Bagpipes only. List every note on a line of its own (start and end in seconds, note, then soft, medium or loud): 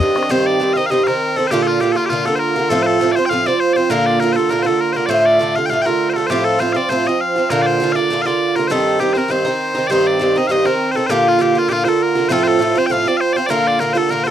0.00 0.31 D#5 medium
0.31 0.47 C5 medium
0.47 0.73 D5 medium
0.73 0.86 D#5 medium
0.73 0.77 F5 medium
0.86 0.90 F5 medium
0.90 1.03 D#5 medium
1.03 1.37 A#4 medium
1.03 1.07 F5 medium
1.37 1.47 A4 medium
1.47 1.63 G4 medium
1.47 1.51 C5 medium
1.63 1.67 A4 medium
1.67 1.80 F4 medium
1.80 1.92 G4 medium
1.92 1.96 A4 medium
1.96 2.06 F4 medium
2.06 2.26 F4 medium
2.06 2.09 G4 medium
2.26 2.35 A4 medium
2.35 2.70 A#4 medium
2.35 2.39 C5 medium
2.70 2.82 A4 loud
2.82 3.12 A4 medium
2.82 2.86 C5 medium
3.12 3.26 C5 medium
3.12 3.16 D5 medium
3.26 3.47 F5 loud
3.26 3.29 G5 loud
3.47 3.60 D5 loud
3.60 3.73 C5 medium
3.73 3.90 C5 medium
3.73 3.77 D5 medium
3.90 4.06 A#4 loud
4.06 4.20 D5 medium
4.20 4.32 A#4 medium
4.32 4.50 A4 medium
4.32 4.36 C5 medium
4.50 4.62 A#4 medium
4.62 4.81 A4 medium
4.62 4.66 C5 medium
4.81 4.92 A#4 medium
4.92 5.06 A#4 medium
4.92 4.96 C5 medium
5.06 5.10 D5 medium
5.10 5.26 C5 medium
5.26 5.56 D5 medium
5.56 5.66 F5 medium
5.66 5.70 G5 medium
5.70 5.82 F5 medium
5.82 5.86 G5 medium
5.86 6.09 A#4 medium
6.09 6.15 A#4 soft
6.09 6.13 C5 soft
6.15 6.27 A4 medium
6.27 6.45 G4 medium
6.27 6.30 C5 medium
6.45 6.60 A4 medium
6.60 6.73 C5 medium
6.73 6.90 D5 medium
6.73 6.76 F5 medium
6.90 7.07 C5 medium
7.07 7.21 D#5 medium
7.21 7.50 F5 medium
7.50 7.62 A#4 loud
7.62 7.66 D5 medium
7.66 7.92 C5 medium
7.92 8.22 D5 medium
7.92 7.96 F5 medium
8.22 8.26 F5 medium
8.26 8.56 D5 medium
8.56 8.67 A#4 medium
8.67 9.00 A4 medium
8.67 8.71 C5 medium
9.00 9.13 G4 medium
9.13 9.17 C5 medium
9.17 9.31 A#4 medium
9.31 9.87 C5 medium
9.87 10.07 C5 medium
9.87 9.91 D5 medium
10.07 10.38 D5 medium
10.38 10.47 D#5 medium
10.47 10.51 F5 loud
10.51 10.66 D#5 loud
10.66 10.91 A#4 medium
10.91 10.96 C5 medium
10.96 11.06 A4 medium
11.06 11.28 G4 medium
11.06 11.10 C5 medium
11.28 11.41 F4 medium
11.41 11.58 G4 medium
11.58 11.69 F4 medium
11.69 11.84 F4 medium
11.69 11.72 G4 medium
11.84 12.03 A4 medium
11.84 11.88 C5 medium
12.03 12.28 A#4 medium
12.28 12.43 A4 loud
12.28 12.32 C5 loud
12.43 12.47 C5 loud
12.47 12.78 A4 loud
12.78 12.86 C5 medium
12.86 12.92 G5 medium
12.92 13.08 F5 loud
13.08 13.17 D5 medium
13.17 13.33 C5 medium
13.17 13.21 F5 medium
13.33 13.47 C5 medium
13.33 13.37 D5 medium
13.47 13.67 A#4 loud
13.47 13.50 D5 loud
13.67 13.80 D5 medium
13.80 13.93 A#4 medium
13.93 13.97 C5 medium
13.97 14.10 A4 medium
14.10 14.23 A#4 loud
14.23 14.31 A4 medium
14.23 14.27 C5 medium